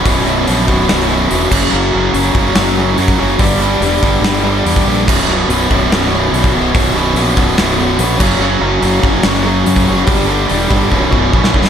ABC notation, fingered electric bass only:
X:1
M:4/4
L:1/8
Q:1/4=144
K:Bm
V:1 name="Fingered electric bass" clef=bass
B,,,,2 ^A,,, B,,,, B,,,,2 E,,, F,,, | F,,, F,,, F,,, F,,, F,,,2 F,, F,,, | G,,,2 E,,, G,,, G,,,2 E,, ^A,,, | B,,,, B,,,, B,,,, B,,,, B,,,,2 B,,, B,,,, |
B,,,,2 ^A,,, B,,,, B,,,,2 A,,, F,,, | F,,, F,,, F,,, F,,, F,,,2 F,, F,,, | G,,,2 E,,, G,,, B,,,,2 ^A,,, B,,,, |]